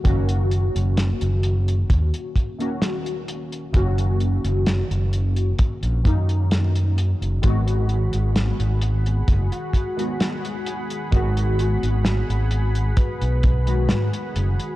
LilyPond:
<<
  \new Staff \with { instrumentName = "Analog synth pad" } { \time 4/4 \key gis \minor \tempo 4 = 65 r1 | r1 | <gis' fis'' b''>1~ | <gis' fis'' b''>1 | }
  \new Staff \with { instrumentName = "Soft synth lead" } { \time 4/4 \key gis \minor r1 | r1 | r2 r16 fis'8 r4 r16 | r8 fis'8 r4 b'4. r8 | }
  \new Staff \with { instrumentName = "Synth keys" } { \time 4/4 \key gis \minor <dis ais cis' fis'>2~ <dis ais cis' fis'>8. <dis ais cis' fis'>4~ <dis ais cis' fis'>16 | <dis ais cis' fis'>2~ <dis ais cis' fis'>8 <dis ais cis' dis'>4. | <dis gis b fis'>2~ <dis gis b fis'>8. <dis gis b fis'>4~ <dis gis b fis'>16 | <dis gis b fis'>2~ <dis gis b fis'>8. <dis gis b fis'>4~ <dis gis b fis'>16 | }
  \new Staff \with { instrumentName = "Fingered electric bass" } { \clef bass \time 4/4 \key gis \minor fis,,8. fis,,8 fis,,8. dis,16 r4. r16 | fis,,8. fis,,8 fis,,8. r16 ais,,16 fis,4~ fis,16 fis,,16 | gis,,8. gis,,8 gis,,8. fis,,16 r4. r16 | gis,,8. gis,,8 gis,,8. r16 b,,8. gis,16 r16 fis,,16 r16 | }
  \new DrumStaff \with { instrumentName = "Drums" } \drummode { \time 4/4 <hh bd>16 hh16 hh16 hh16 <hh sn>16 hh16 hh16 hh16 <hh bd>16 hh16 <hh bd>16 hh16 <hh sn>16 hh16 hh16 hh16 | <hh bd>16 hh16 hh16 hh16 <hh sn>16 hh16 hh16 hh16 <hh bd>16 hh16 <hh bd>16 hh16 <hh sn>16 hh16 hh16 hh16 | <hh bd>16 hh16 hh16 hh16 <hh sn>16 hh16 hh16 hh16 <hh bd>16 hh16 <hh bd>16 hh16 <hh sn>16 hh16 hh16 hh16 | <hh bd>16 hh16 hh16 hh16 <hh sn>16 hh16 hh16 hh16 <hh bd>16 hh16 <hh bd>16 hh16 <hh sn>16 hh16 hh16 hh16 | }
>>